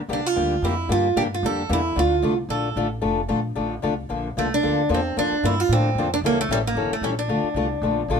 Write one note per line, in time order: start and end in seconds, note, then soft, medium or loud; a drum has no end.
0.08 0.35 C2 medium
0.08 0.19 D3 medium
0.08 0.19 G3 medium
0.08 0.19 A#3 medium
0.08 0.20 D4 medium
0.08 0.19 G4 medium
0.13 0.26 D4 medium
0.26 0.65 F4 medium
0.36 0.61 D2 medium
0.36 0.54 D3 medium
0.36 0.54 G3 medium
0.36 0.54 A#3 medium
0.36 0.54 D4 medium
0.36 0.54 G4 medium
0.62 0.88 F2 medium
0.62 0.73 D3 medium
0.62 0.73 G3 medium
0.62 0.73 A#3 medium
0.62 0.73 D4 medium
0.62 0.89 E4 medium
0.62 0.74 G4 loud
0.89 1.15 G2 medium
0.89 1.07 D3 medium
0.89 1.07 G3 medium
0.89 1.07 A#3 medium
0.89 1.08 D4 medium
0.89 1.15 F4 loud
0.89 1.08 G4 medium
1.16 1.42 G2 medium
1.16 1.26 D3 medium
1.16 1.26 G3 medium
1.16 1.26 A#3 medium
1.16 1.26 D4 medium
1.16 1.22 G4 loud
1.16 1.27 G4 medium
1.34 1.44 F4 medium
1.43 1.69 F2 medium
1.43 1.61 D3 medium
1.43 1.61 G3 medium
1.43 1.62 A#3 medium
1.43 1.62 D4 medium
1.43 1.62 G4 medium
1.43 1.72 A4 loud
1.69 1.95 E2 loud
1.69 1.79 D3 medium
1.69 1.79 G3 medium
1.69 1.80 A#3 medium
1.69 1.80 D4 medium
1.69 1.99 E4 medium
1.69 1.80 G4 medium
1.96 2.22 D2 medium
1.96 2.14 D3 medium
1.96 2.14 A3 medium
1.96 2.14 D4 medium
1.96 2.15 F4 medium
1.96 2.36 F4 loud
1.96 2.15 A4 medium
2.22 2.48 C2 medium
2.22 2.32 D3 medium
2.22 2.33 A3 medium
2.22 2.33 D4 medium
2.22 2.33 F4 medium
2.22 2.33 A4 medium
2.49 2.75 A#1 medium
2.49 2.67 D3 medium
2.49 2.68 A3 medium
2.49 2.68 D4 medium
2.49 2.68 F4 medium
2.49 2.88 A4 medium
2.49 2.68 A4 medium
2.76 3.02 A1 medium
2.76 2.86 D3 medium
2.76 2.87 A3 medium
2.76 2.86 D4 medium
2.76 2.87 F4 medium
2.76 2.87 A4 medium
3.01 3.28 F1 medium
3.01 3.20 D3 medium
3.01 3.20 A3 medium
3.01 3.20 D4 medium
3.01 3.20 F4 medium
3.01 3.20 A4 medium
3.28 3.55 A#1 loud
3.28 3.39 D3 medium
3.28 3.39 A3 medium
3.28 3.39 D4 medium
3.28 3.39 F4 medium
3.28 3.39 A4 loud
3.55 3.82 A1 medium
3.55 3.74 D3 medium
3.55 3.74 A3 medium
3.55 3.74 D4 medium
3.55 3.74 F4 medium
3.55 3.74 A4 medium
3.82 4.09 C2 medium
3.82 3.92 D3 medium
3.82 3.93 A3 medium
3.82 3.93 D4 medium
3.82 3.93 F4 medium
3.82 3.93 A4 medium
4.09 4.35 A#1 medium
4.09 4.27 D3 medium
4.09 4.27 F3 medium
4.09 4.28 A#3 medium
4.09 4.28 D4 medium
4.09 4.27 A4 medium
4.37 4.62 C2 medium
4.37 4.46 D3 medium
4.37 4.47 F3 medium
4.37 4.52 A3 medium
4.37 4.47 A#3 medium
4.37 4.47 D4 loud
4.37 4.47 A4 medium
4.54 4.88 D4 medium
4.63 4.89 D2 medium
4.63 4.81 D3 medium
4.63 4.81 F3 medium
4.63 4.81 A#3 medium
4.63 4.81 D4 medium
4.63 4.81 A4 medium
4.89 5.15 E2 medium
4.89 4.99 D3 medium
4.89 4.99 F3 medium
4.89 4.99 A#3 medium
4.89 4.99 D4 medium
4.89 5.00 A4 medium
4.94 5.17 C4 medium
5.17 5.30 F2 medium
5.17 5.34 D3 medium
5.17 5.34 F3 medium
5.17 5.34 A#3 medium
5.17 5.35 D4 medium
5.17 5.45 D4 loud
5.17 5.35 A4 medium
5.32 muted upright bass stroke soft
5.43 5.68 G2 medium
5.43 5.53 D3 medium
5.43 5.53 F3 medium
5.43 5.53 A#3 medium
5.43 5.54 D4 medium
5.43 5.60 E4 loud
5.43 5.54 A4 medium
5.60 5.71 F4 medium
5.69 5.94 A2 medium
5.69 5.88 D3 medium
5.69 5.89 F3 medium
5.69 5.89 A#3 medium
5.69 6.10 C4 medium
5.73 5.89 D4 medium
5.73 5.89 A4 medium
5.95 6.21 F2 medium
5.95 6.07 D3 medium
5.95 6.07 F3 loud
5.95 6.07 A#3 medium
5.95 6.07 D4 medium
5.99 6.07 A4 medium
6.14 6.18 D4 loud
6.21 6.48 C#2 medium
6.21 6.41 E3 medium
6.21 6.42 G3 medium
6.21 6.42 C#4 medium
6.21 6.42 E4 medium
6.21 6.42 A4 medium
6.26 6.38 A#3 loud
6.41 6.51 A3 loud
6.49 6.74 A1 loud
6.49 6.60 E3 medium
6.49 6.60 G3 medium
6.49 6.57 G3 loud
6.49 6.60 C#4 medium
6.49 6.60 E4 medium
6.49 6.60 A4 loud
6.67 6.91 A#3 medium
6.75 6.89 G1 medium
6.75 6.94 E3 medium
6.75 6.94 G3 medium
6.75 6.94 C#4 medium
6.75 6.94 E4 medium
6.75 6.95 A4 medium
6.90 7.03 A3 medium
6.90 muted upright bass stroke soft
7.01 7.28 A#1 medium
7.01 7.13 E3 medium
7.01 7.13 G3 medium
7.01 7.13 C#4 medium
7.01 7.09 C#4 medium
7.01 7.13 E4 medium
7.01 7.13 A4 medium
7.19 8.06 D4 medium
7.28 7.42 D2 medium
7.28 7.47 D3 medium
7.28 7.47 A3 medium
7.28 7.47 D4 medium
7.28 7.47 F4 medium
7.28 7.47 A4 medium
7.43 muted upright bass stroke soft
7.54 7.81 C2 medium
7.54 7.66 D3 medium
7.54 7.66 A3 medium
7.54 7.66 D4 medium
7.54 7.66 F4 medium
7.54 7.66 A4 medium
7.82 8.08 A#1 loud
7.82 8.01 D3 medium
7.82 8.01 A3 medium
7.82 8.01 D4 medium
7.82 8.01 F4 medium
7.82 8.01 A4 medium
8.08 8.20 A1 medium
8.08 8.19 D3 medium
8.08 8.20 A3 medium
8.08 8.20 D4 medium
8.08 8.20 F4 medium
8.08 8.20 A4 loud